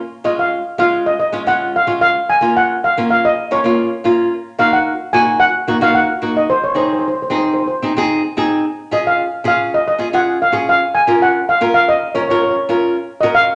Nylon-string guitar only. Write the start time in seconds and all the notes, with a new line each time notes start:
0.24 G#3 C#4 F4
0.78 G#3 C#4 F4
1.32 G#3 C#4 F4
1.47 G#3 C#4 F4
1.87 G#3 C#4 F4
2.41 A#3 C#4 F4
2.97 A#3 C#4 F4
3.51 A#3 C#4 F4
3.64 A#3 C#4 F4
4.04 A#3 C#4 F4
4.59 A#3 D#4 F#4
5.13 A#3 D#4 F#4
5.68 A#3 D#4 F#4
5.81 A#3 D#4 F#4
6.22 A#3 D#4 F#4
6.75 C4 D#4 G#4
7.30 C4 D#4 G#4
7.82 C4 D#4 G#4
7.97 C4 D#4 G#4
8.37 C4 D#4 G#4
8.91 C#4 F4 G#4
9.44 C#4 F4 G#4
9.98 C#4 F4 G#4
10.13 C#4 F4 G#4
10.52 C#4 F4 G#4
11.07 C#4 F4 A#4
11.61 C#4 F4 A#4
12.15 C#4 F4 A#4
12.30 C#4 F4 A#4
12.69 C#4 F4 A#4
13.23 C#4 F#4 A#4